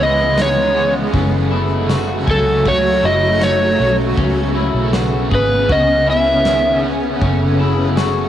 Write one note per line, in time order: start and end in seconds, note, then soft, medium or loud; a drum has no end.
0.00 1.10 C#2 loud
0.00 4.14 C#3 medium
0.00 1.10 E3 medium
0.00 1.11 G#3 medium
0.00 1.10 B3 medium
0.00 0.37 B3 soft
0.00 0.38 C#4 soft
0.00 0.38 E4 medium
0.00 0.37 G#4 medium
0.00 0.40 D#5 loud
0.36 0.75 E3 medium
0.36 0.76 B3 medium
0.36 0.76 C#4 medium
0.36 0.75 D#4 medium
0.36 snare loud
0.36 ride medium
0.36 tambourine medium
0.41 0.73 G#4 medium
0.41 0.93 C#5 loud
0.75 1.12 C#4 medium
0.75 1.14 C#4 medium
0.75 1.13 G#4 medium
0.80 1.15 B3 soft
1.12 2.24 F#1 loud
1.12 1.51 F#2 loud
1.12 1.52 C#3 loud
1.12 4.15 F#3 medium
1.12 1.52 F#3 loud
1.12 4.15 A3 medium
1.12 1.52 A3 loud
1.12 1.51 C#4 medium
1.12 1.51 C#4 loud
1.12 4.14 F#4 medium
1.12 1.49 A4 loud
1.12 kick loud
1.12 ride medium
1.50 1.89 A3 medium
1.50 1.90 C#4 medium
1.50 1.89 E4 medium
1.50 1.89 A4 medium
1.55 1.87 F#3 soft
1.88 2.27 F#3 medium
1.88 2.28 A3 medium
1.88 2.27 C#4 medium
1.88 2.26 F#4 medium
1.88 snare loud
1.88 ride medium
1.88 tambourine medium
1.94 2.25 A4 medium
2.26 3.00 C#2 medium
2.26 2.66 A3 soft
2.26 2.66 C#4 medium
2.26 2.65 A4 medium
2.26 2.65 G#5 medium
2.26 kick loud
2.31 2.65 F#3 soft
2.31 2.68 A4 medium
2.65 3.03 F#2 medium
2.65 3.04 C#3 medium
2.65 3.04 F#3 medium
2.65 3.04 A3 medium
2.65 3.04 C#4 medium
2.65 3.03 F#4 medium
2.65 3.02 A4 loud
2.65 3.06 C#5 loud
2.65 kick medium
2.65 ride medium
3.03 3.75 F#1 medium
3.03 3.41 A3 soft
3.03 3.42 C#4 soft
3.03 3.41 E4 medium
3.03 3.41 A4 soft
3.03 3.44 D#5 loud
3.08 3.39 F#3 soft
3.40 3.79 F#3 medium
3.40 3.80 A3 medium
3.40 3.79 C#4 medium
3.40 3.79 D#4 medium
3.40 3.96 C#5 medium
3.40 snare loud
3.40 ride medium
3.40 tambourine medium
3.45 3.77 A4 medium
3.78 4.16 B1 medium
3.78 4.17 A3 soft
3.78 4.16 C#4 medium
3.78 4.17 C#4 medium
3.78 4.17 A4 medium
3.83 4.17 F#3 soft
4.16 4.72 C#2 loud
4.16 4.55 C#3 loud
4.16 8.29 C#3 medium
4.16 4.55 E3 medium
4.16 7.18 B3 medium
4.16 4.56 B3 medium
4.16 4.55 C#4 medium
4.16 7.18 C#4 medium
4.16 4.56 C#4 medium
4.16 4.53 G#4 loud
4.16 kick loud
4.16 ride medium
4.54 4.94 C#4 soft
4.54 4.93 E4 medium
4.54 4.93 G#4 medium
4.59 4.93 B3 soft
4.74 5.29 B1 medium
4.92 5.31 E3 medium
4.92 5.32 B3 medium
4.92 5.32 C#4 medium
4.92 5.31 F#4 medium
4.92 snare loud
4.92 ride medium
4.92 tambourine medium
4.97 5.29 G#4 medium
5.30 5.68 G#1 medium
5.30 5.70 C#4 medium
5.30 5.69 G#4 medium
5.30 kick loud
5.35 5.69 B3 soft
5.35 5.72 B4 medium
5.68 7.17 C#2 loud
5.68 6.07 C#3 medium
5.68 6.07 E3 medium
5.68 6.08 B3 medium
5.68 6.08 C#4 medium
5.68 6.07 F#4 medium
5.68 6.05 G#4 medium
5.68 6.10 D#5 loud
5.68 kick loud
5.68 ride medium
5.89 7.29 G#4 medium
6.06 6.46 C#4 medium
6.06 6.45 E4 medium
6.06 6.45 G#4 medium
6.06 6.81 E5 loud
6.12 6.45 B3 soft
6.44 6.83 D#3 medium
6.44 6.83 E3 medium
6.44 6.84 B3 medium
6.44 6.84 C#4 medium
6.44 snare loud
6.44 ride medium
6.44 tambourine medium
6.49 6.81 G#4 medium
6.83 7.21 C#4 medium
6.83 7.22 C#4 soft
6.83 7.21 G#4 medium
6.88 7.22 B3 soft
7.21 8.29 F#1 loud
7.21 7.59 F#2 medium
7.21 7.59 C#3 loud
7.21 8.29 F#3 medium
7.21 7.60 F#3 loud
7.21 8.29 A3 medium
7.21 7.60 A3 loud
7.21 7.60 C#4 medium
7.21 7.59 C#4 loud
7.21 8.29 F#4 medium
7.21 7.57 A4 loud
7.21 kick medium
7.21 ride soft
7.32 8.29 A4 medium
7.37 8.29 C#5 medium
7.58 7.96 A3 medium
7.58 7.98 C#4 medium
7.58 7.97 E4 medium
7.58 7.97 A4 medium
7.63 7.94 F#3 soft
7.95 8.29 F#3 medium
7.95 8.29 A3 medium
7.95 8.29 C#4 medium
7.95 8.29 F#4 medium
7.95 snare loud
7.95 ride medium
7.95 tambourine medium
8.00 8.29 A4 medium